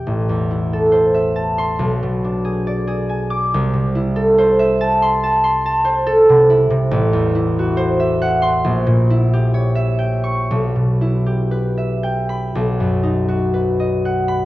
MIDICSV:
0, 0, Header, 1, 2, 480
1, 0, Start_track
1, 0, Key_signature, 0, "minor"
1, 0, Tempo, 870827
1, 21, Time_signature, 4, 2, 24, 8
1, 1940, Tempo, 857143
1, 3847, Key_signature, 1, "minor"
1, 5300, Tempo, 970874
1, 5780, Tempo, 1029160
1, 6740, Tempo, 988468
1, 7664, End_track
2, 0, Start_track
2, 0, Title_t, "Harp"
2, 0, Program_c, 0, 46
2, 0, Note_on_c, 0, 76, 44
2, 37, Note_on_c, 0, 33, 66
2, 161, Note_on_c, 0, 40, 45
2, 281, Note_on_c, 0, 64, 50
2, 404, Note_on_c, 0, 69, 56
2, 506, Note_on_c, 0, 72, 58
2, 623, Note_off_c, 0, 76, 0
2, 629, Note_on_c, 0, 76, 54
2, 748, Note_on_c, 0, 81, 60
2, 872, Note_on_c, 0, 84, 82
2, 987, Note_on_c, 0, 35, 70
2, 1005, Note_off_c, 0, 72, 0
2, 1007, Note_off_c, 0, 76, 0
2, 1007, Note_off_c, 0, 81, 0
2, 1009, Note_off_c, 0, 84, 0
2, 1014, Note_off_c, 0, 64, 0
2, 1015, Note_off_c, 0, 33, 0
2, 1015, Note_off_c, 0, 40, 0
2, 1015, Note_off_c, 0, 69, 0
2, 1118, Note_on_c, 0, 47, 58
2, 1237, Note_on_c, 0, 62, 55
2, 1349, Note_on_c, 0, 68, 61
2, 1470, Note_on_c, 0, 74, 64
2, 1576, Note_off_c, 0, 68, 0
2, 1583, Note_on_c, 0, 68, 62
2, 1704, Note_on_c, 0, 80, 68
2, 1820, Note_on_c, 0, 86, 97
2, 1952, Note_on_c, 0, 36, 85
2, 1958, Note_off_c, 0, 35, 0
2, 1958, Note_off_c, 0, 86, 0
2, 1959, Note_off_c, 0, 68, 0
2, 1960, Note_off_c, 0, 80, 0
2, 1962, Note_off_c, 0, 74, 0
2, 1965, Note_off_c, 0, 47, 0
2, 1965, Note_off_c, 0, 62, 0
2, 2060, Note_on_c, 0, 48, 61
2, 2181, Note_on_c, 0, 64, 67
2, 2298, Note_on_c, 0, 69, 70
2, 2425, Note_on_c, 0, 72, 77
2, 2542, Note_on_c, 0, 76, 77
2, 2662, Note_on_c, 0, 81, 86
2, 2782, Note_on_c, 0, 84, 102
2, 2894, Note_off_c, 0, 81, 0
2, 2900, Note_on_c, 0, 81, 84
2, 3007, Note_off_c, 0, 84, 0
2, 3014, Note_on_c, 0, 84, 88
2, 3129, Note_off_c, 0, 81, 0
2, 3136, Note_on_c, 0, 81, 85
2, 3236, Note_off_c, 0, 72, 0
2, 3242, Note_on_c, 0, 72, 83
2, 3360, Note_off_c, 0, 69, 0
2, 3366, Note_on_c, 0, 69, 83
2, 3486, Note_off_c, 0, 48, 0
2, 3493, Note_on_c, 0, 48, 75
2, 3601, Note_off_c, 0, 64, 0
2, 3608, Note_on_c, 0, 64, 77
2, 3715, Note_off_c, 0, 48, 0
2, 3722, Note_on_c, 0, 48, 74
2, 3839, Note_on_c, 0, 33, 102
2, 3863, Note_off_c, 0, 48, 0
2, 3872, Note_off_c, 0, 36, 0
2, 3962, Note_on_c, 0, 40, 69
2, 4078, Note_off_c, 0, 64, 0
2, 4085, Note_on_c, 0, 64, 71
2, 4219, Note_on_c, 0, 66, 77
2, 4313, Note_off_c, 0, 72, 0
2, 4320, Note_on_c, 0, 72, 80
2, 4441, Note_off_c, 0, 76, 0
2, 4448, Note_on_c, 0, 76, 72
2, 4571, Note_on_c, 0, 78, 84
2, 4679, Note_off_c, 0, 84, 0
2, 4685, Note_on_c, 0, 84, 102
2, 4811, Note_on_c, 0, 34, 85
2, 4822, Note_off_c, 0, 33, 0
2, 4822, Note_off_c, 0, 69, 0
2, 4823, Note_off_c, 0, 40, 0
2, 4823, Note_off_c, 0, 72, 0
2, 4825, Note_off_c, 0, 84, 0
2, 4826, Note_off_c, 0, 81, 0
2, 4828, Note_off_c, 0, 78, 0
2, 4832, Note_off_c, 0, 66, 0
2, 4934, Note_on_c, 0, 46, 73
2, 5059, Note_off_c, 0, 64, 0
2, 5066, Note_on_c, 0, 64, 72
2, 5196, Note_on_c, 0, 67, 68
2, 5310, Note_on_c, 0, 73, 71
2, 5410, Note_off_c, 0, 76, 0
2, 5416, Note_on_c, 0, 76, 65
2, 5532, Note_on_c, 0, 79, 72
2, 5654, Note_on_c, 0, 85, 88
2, 5787, Note_on_c, 0, 35, 73
2, 5799, Note_off_c, 0, 85, 0
2, 5801, Note_off_c, 0, 34, 0
2, 5802, Note_off_c, 0, 46, 0
2, 5804, Note_off_c, 0, 73, 0
2, 5904, Note_on_c, 0, 47, 53
2, 6018, Note_off_c, 0, 64, 0
2, 6023, Note_on_c, 0, 64, 55
2, 6135, Note_off_c, 0, 67, 0
2, 6141, Note_on_c, 0, 67, 61
2, 6257, Note_on_c, 0, 71, 60
2, 6374, Note_off_c, 0, 76, 0
2, 6379, Note_on_c, 0, 76, 56
2, 6493, Note_off_c, 0, 79, 0
2, 6499, Note_on_c, 0, 79, 67
2, 6620, Note_on_c, 0, 83, 74
2, 6737, Note_off_c, 0, 35, 0
2, 6742, Note_on_c, 0, 35, 71
2, 6757, Note_off_c, 0, 76, 0
2, 6757, Note_off_c, 0, 79, 0
2, 6759, Note_off_c, 0, 67, 0
2, 6760, Note_off_c, 0, 64, 0
2, 6761, Note_off_c, 0, 47, 0
2, 6862, Note_on_c, 0, 42, 54
2, 6974, Note_on_c, 0, 63, 54
2, 7097, Note_on_c, 0, 66, 62
2, 7214, Note_off_c, 0, 71, 0
2, 7220, Note_on_c, 0, 71, 61
2, 7346, Note_on_c, 0, 75, 56
2, 7470, Note_on_c, 0, 78, 65
2, 7576, Note_off_c, 0, 83, 0
2, 7581, Note_on_c, 0, 83, 84
2, 7664, Note_off_c, 0, 35, 0
2, 7664, Note_off_c, 0, 42, 0
2, 7664, Note_off_c, 0, 63, 0
2, 7664, Note_off_c, 0, 66, 0
2, 7664, Note_off_c, 0, 71, 0
2, 7664, Note_off_c, 0, 75, 0
2, 7664, Note_off_c, 0, 78, 0
2, 7664, Note_off_c, 0, 83, 0
2, 7664, End_track
0, 0, End_of_file